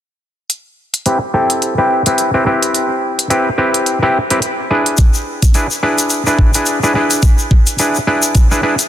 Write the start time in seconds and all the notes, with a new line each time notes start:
0.50 closed hi-hat
0.94 closed hi-hat
1.06 C4 E4 G4 B4, closed hi-hat
1.34 C4 E4 G4 A4
1.50 closed hi-hat
1.62 closed hi-hat
1.78 C4 E4 G4 B4
2.06 C4 E4 G4 B4, closed hi-hat
2.18 closed hi-hat
2.34 C4 E4 G4 B4
2.46 C4 E4 G4 B4
2.63 closed hi-hat
2.75 closed hi-hat
3.19 closed hi-hat
3.30 C4 E4 G4 B4, closed hi-hat
3.58 C4 E4 G4 B4
3.74 closed hi-hat
3.86 closed hi-hat
4.02 C4 E4 G4 B4
4.30 C4 E4 G4 B4, closed hi-hat
4.42 closed hi-hat
4.71 D4 E4 G#4 B4
4.86 closed hi-hat
4.97 kick, closed hi-hat, shaker
5.14 shaker
5.42 kick, closed hi-hat, shaker
5.54 D4 E4 G#4 B4, closed hi-hat, shaker
5.71 shaker
5.83 D4 E4 G#4 B4
5.98 closed hi-hat, shaker
6.10 closed hi-hat, shaker
6.27 D4 E4 G#4 B4, shaker
6.39 kick
6.54 D4 E4 G#4 B4, closed hi-hat, shaker
6.66 closed hi-hat, shaker
6.83 D4 E4 G#4 B4, shaker
6.95 D4 E4 G#4 B4
7.11 closed hi-hat, shaker
7.22 kick, closed hi-hat, shaker
7.39 shaker
7.51 kick
7.67 closed hi-hat, shaker
7.79 D4 E4 G#4 B4, closed hi-hat, shaker
7.95 shaker
8.07 D4 E4 G#4 B4
8.23 closed hi-hat, shaker
8.35 kick, closed hi-hat, shaker
8.51 D4 E4 G#4 B4, shaker
8.63 D4 E4 G#4 B4
8.79 closed hi-hat, shaker